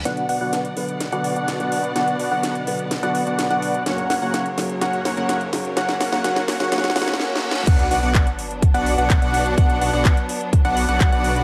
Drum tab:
CC |------------------------------------------------------------------------------------------------|------------------------------------------------------------------------------------------------|------------------------------------------------------------------------------------------------|------------------------------------------------------------------------------------------------|
HH |x-----x-----o-----------x-----x-----o-----x-----x-----x-----o-----x-----x-----x-----o-----x-----|x-----x-----o-----------x-----x-----o-----x-----x-----x-----o-----x-----x-----x-----o-----x-----|x-----x-----o-----------x-----x-----o-----x-----x-----x-----o-----x-----x-----x-----o-----x-----|x-----x-----o-----------x-----x-----o-----x-----x-----x-----o-----x-----------------------------|
CP |------------------------------------------------------------------------------------------------|------------------------------------------------------------------------------------------------|------------------------------------------------------------------------------------------------|------------------------------------------------------------------------------------------------|
SD |o-----------------------o-----------------------o-----------------------o-----------------------|o-----------------------o-----------------------o-----------------------o-----------------------|o-----------o-----------o-----------o-----------o-----------o-----------o-----------o-----------|o-----o-----o-----o-----o-----o-----o-----o-----o--o--o--o--o--o--o--o--o-------o-------o-------|
BD |------------------------------------------------------------------------------------------------|------------------------------------------------------------------------------------------------|------------------------------------------------------------------------------------------------|------------------------------------------------------------------------------------------------|

CC |x-----------------------------------------------------------------------------------------------|------------------------------------------------------------------------------------------------|
HH |x-----x-----o-----------x-----x-----o-----x-----x-----x-----o-----x-----x-----x-----o-----x-----|x-----x-----o-----------x-----x-----o-----x-----x-----x-----o-----x-----x-----x-----o-----x-----|
CP |------------------------x-----------------------------------------------x-----------------------|------------------------x-----------------------------------------------x-----------------------|
SD |------------------------------------------------------------------------------------------------|------------------------------------------------------------------------------------------------|
BD |o-----------------------o-----------------------o-----------------------o-----------------------|o-----------------------o-----------------------o-----------------------o-----------------------|